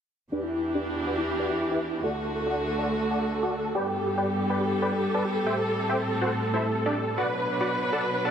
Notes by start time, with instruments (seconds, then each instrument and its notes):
0.32 string section E2 E3 D4 G4, supersaw synth D4 G4 B4 D5
0.43 supersaw synth E4
0.53 supersaw synth E4
0.64 supersaw synth E4
0.75 supersaw synth D4 G4 B4 D5
0.86 supersaw synth E4
0.96 supersaw synth E4
1.07 supersaw synth F#4 B4 D5 F#5
1.18 supersaw synth E4
1.28 supersaw synth E4
1.39 supersaw synth F#4 B4 D5 F#5
1.50 supersaw synth E4
1.61 supersaw synth E4
1.71 supersaw synth E4 G4 B4 E5
1.82 supersaw synth E4
1.93 supersaw synth E4
2.03 string section D2 D3 A3 F#4, supersaw synth F#4 A4 D5 F#5
2.14 supersaw synth A4
2.25 supersaw synth A4
2.36 supersaw synth A4
2.46 supersaw synth F#4 A4 D5 F#5
2.57 supersaw synth A4
2.68 supersaw synth A4
2.78 supersaw synth A4 D5 F#5 A5
2.89 supersaw synth A4
3.00 supersaw synth A4
3.11 supersaw synth A4 D5 F#5 A5
3.21 supersaw synth A4
3.32 supersaw synth A4
3.43 supersaw synth F#4 A4 D5 F#5
3.53 supersaw synth A4
3.64 supersaw synth A4
3.75 string section G2 G3 B3 A4, supersaw synth G4 B4 D5 G5
3.86 supersaw synth G4
3.96 supersaw synth G4
4.07 supersaw synth G4
4.18 supersaw synth G4 B4 D5 G5
4.28 supersaw synth G4
4.39 supersaw synth G4
4.50 supersaw synth B4 D5 G5 B5
4.61 supersaw synth G4
4.71 supersaw synth G4
4.82 supersaw synth B4 D5 G5 B5
4.93 supersaw synth G4
5.03 supersaw synth G4
5.14 supersaw synth A4 B4 D5 A5
5.25 supersaw synth G4
5.36 supersaw synth G4
5.46 string section A2 C4, supersaw synth G4 C5 E5 G5
5.57 supersaw synth A4
5.68 supersaw synth A4
5.78 supersaw synth A4
5.89 supersaw synth G4 C5 E5 G5
6.00 supersaw synth A4
6.11 supersaw synth A4
6.21 supersaw synth F#4 A4 C5 F#5
6.32 supersaw synth A4
6.43 supersaw synth A4
6.54 supersaw synth E4 A4 C5 E5
6.64 supersaw synth A4
6.75 supersaw synth A4
6.86 supersaw synth D4 G4 A4 D5
6.96 supersaw synth A4
7.07 supersaw synth A4
7.18 string section B2 F#3 D4 B4, supersaw synth F#4 B4 D5 F#5
7.28 supersaw synth B4
7.39 supersaw synth B4
7.50 supersaw synth B4
7.61 supersaw synth F#4 B4 D5 F#5
7.71 supersaw synth B4
7.82 supersaw synth B4
7.93 supersaw synth A4 D5 F#5 A5
8.03 supersaw synth B4
8.14 supersaw synth B4
8.25 supersaw synth A4 D5 F#5 A5